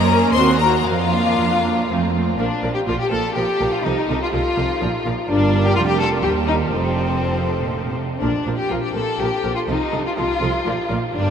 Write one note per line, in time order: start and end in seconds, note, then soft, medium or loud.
0.00 0.28 F#2 medium
0.00 0.33 A#3 medium
0.00 0.35 A#4 medium
0.00 0.33 A#5 loud
0.10 0.33 A#3 medium
0.10 0.34 C#4 medium
0.33 0.79 D#2 medium
0.33 0.59 A#3 medium
0.33 0.60 C4 medium
0.33 0.60 F#4 medium
0.33 0.42 C5 medium
0.33 0.59 C6 loud
0.59 0.85 A#3 medium
0.59 0.86 F#4 medium
0.59 0.68 A#4 medium
0.59 0.84 A#5 loud
0.85 1.31 F2 medium
0.85 2.11 F3 medium
0.85 2.11 F4 medium
0.85 2.13 F5 medium
1.11 1.61 A#3 medium
1.11 1.62 D4 medium
1.38 1.82 F2 medium
1.62 1.87 A#3 medium
1.62 1.87 D4 medium
1.88 2.32 F2 medium
1.88 2.12 A3 medium
1.88 2.12 C4 medium
2.13 2.37 A3 medium
2.13 2.37 C4 medium
2.38 2.46 A#1 medium
2.38 2.47 A#2 medium
2.38 2.46 F3 medium
2.38 2.72 D4 medium
2.38 2.46 A#4 medium
2.38 2.46 D5 medium
2.62 2.70 A#1 medium
2.62 2.71 A#2 soft
2.62 2.70 F3 soft
2.62 2.71 A#4 soft
2.62 2.71 D5 soft
2.74 2.79 G4 medium
2.86 2.96 A#1 medium
2.86 2.95 A#2 soft
2.86 2.94 F3 soft
2.86 2.99 F4 medium
2.86 2.94 A#4 soft
2.86 2.95 D5 medium
3.00 3.11 G4 medium
3.10 3.20 A#1 soft
3.10 3.19 A#2 soft
3.10 3.19 F3 soft
3.10 3.36 A4 medium
3.10 3.18 A#4 soft
3.10 3.19 D5 medium
3.34 3.44 A#1 medium
3.34 3.44 A#2 medium
3.34 3.42 F3 medium
3.34 3.72 G4 medium
3.34 3.42 A#4 soft
3.34 3.44 D5 medium
3.59 3.68 A#1 medium
3.59 3.67 A#2 medium
3.59 3.67 F3 soft
3.59 3.67 A#4 soft
3.59 3.69 D5 soft
3.73 3.85 F4 medium
3.84 3.93 C2 medium
3.84 3.92 C3 medium
3.84 3.93 F3 medium
3.84 4.21 D#4 medium
3.84 3.93 A4 medium
3.84 3.93 D#5 medium
4.09 4.18 C2 medium
4.09 4.17 C3 medium
4.09 4.17 F3 soft
4.09 4.17 A4 soft
4.09 4.18 D#5 medium
4.23 4.28 F4 medium
4.32 4.42 C2 medium
4.32 4.41 C3 medium
4.32 4.40 F3 medium
4.32 5.04 F4 medium
4.32 4.40 A4 medium
4.32 4.41 D#5 medium
4.56 4.65 C2 medium
4.56 4.65 C3 medium
4.56 4.64 F3 medium
4.56 4.64 A4 soft
4.56 4.66 D#5 medium
4.81 4.90 A#1 medium
4.81 4.89 A#2 medium
4.81 4.89 F3 medium
4.81 4.89 A#4 medium
4.81 4.89 D5 medium
5.05 5.14 A#1 medium
5.05 5.13 A#2 medium
5.05 5.14 F3 medium
5.05 5.13 A#4 medium
5.05 5.13 D5 medium
5.28 5.73 G1 medium
5.28 5.73 G2 medium
5.28 6.20 G3 medium
5.28 5.62 D4 medium
5.28 6.20 A#4 medium
5.28 6.20 D5 medium
5.64 5.76 G4 medium
5.75 6.25 F1 medium
5.75 6.24 F2 medium
5.75 5.80 F4 medium
5.87 5.99 G4 medium
6.00 6.08 A4 medium
6.22 6.73 D#2 medium
6.22 6.72 G3 medium
6.22 6.30 G4 medium
6.22 6.72 A#4 medium
6.22 6.71 C5 medium
6.48 6.56 D#4 medium
6.72 7.99 F1 medium
6.72 7.16 F2 soft
6.72 7.98 F3 medium
6.72 7.94 C4 medium
6.72 8.01 A4 medium
6.72 7.98 C5 medium
7.22 7.57 F2 soft
7.60 7.72 A#2 soft
7.72 7.84 A2 soft
7.83 7.96 A#2 soft
7.95 8.21 C3 soft
8.21 8.30 A#1 medium
8.21 8.29 A#2 medium
8.21 8.30 F3 soft
8.21 8.55 D4 medium
8.21 8.29 A#4 soft
8.21 8.30 A#4 soft
8.45 8.54 A#1 soft
8.45 8.53 A#2 soft
8.45 8.54 F3 soft
8.45 8.53 A#4 soft
8.45 8.54 A#4 soft
8.57 8.70 G4 medium
8.69 8.78 A#1 soft
8.69 8.78 A#2 soft
8.69 8.78 F3 soft
8.69 8.82 F4 medium
8.69 8.78 A#4 soft
8.82 8.94 G4 medium
8.93 9.02 A#1 soft
8.93 9.03 A#2 soft
8.93 9.01 F3 soft
8.93 9.19 A4 medium
8.93 9.01 A#4 soft
8.93 9.03 A#4 soft
9.19 9.27 A#1 soft
9.19 9.28 A#2 soft
9.19 9.28 F3 soft
9.19 9.57 G4 medium
9.19 9.27 A#4 soft
9.19 9.28 A#4 soft
9.43 9.51 A#1 soft
9.43 9.53 A#2 soft
9.43 9.51 F3 soft
9.43 9.51 A#4 soft
9.56 9.61 F4 medium
9.67 9.75 C2 medium
9.67 9.77 C3 medium
9.67 9.77 F3 soft
9.67 10.05 D#4 medium
9.67 9.77 A4 soft
9.67 9.76 D#5 soft
9.92 10.00 C2 medium
9.92 10.02 C3 medium
9.92 10.00 F3 soft
9.92 10.00 A4 soft
9.92 10.00 D#5 soft
10.06 10.11 F4 medium
10.16 10.25 C2 medium
10.16 10.26 C3 soft
10.16 10.24 F3 medium
10.16 10.87 F4 medium
10.16 10.24 A4 soft
10.16 10.24 D#5 soft
10.40 10.49 C2 medium
10.40 10.50 C3 medium
10.40 10.49 F3 soft
10.40 10.48 A4 soft
10.40 10.49 D#5 soft
10.65 10.73 A#1 medium
10.65 10.74 A#2 medium
10.65 10.74 F3 soft
10.65 10.73 A#4 soft
10.65 10.74 D5 soft
10.89 10.97 A#1 medium
10.89 10.98 A#2 medium
10.89 10.97 F3 soft
10.89 10.97 A#4 soft
10.89 10.98 D5 soft
11.12 11.30 G1 medium
11.12 11.30 G2 medium
11.12 11.30 G3 medium
11.12 11.30 D4 medium
11.12 11.30 A#4 medium
11.12 11.30 D5 soft